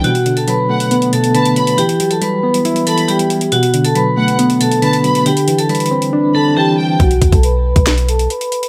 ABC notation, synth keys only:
X:1
M:4/4
L:1/8
Q:1/4=138
K:Bphr
V:1 name="Synth keys" clef=bass
B,, D, F, A, B, B,, D, F, | E, F, G, B, E E, G, G, | B,, D, F, A, B, B,, D, F, | D, E, G, C D D, E, G, |
z8 |]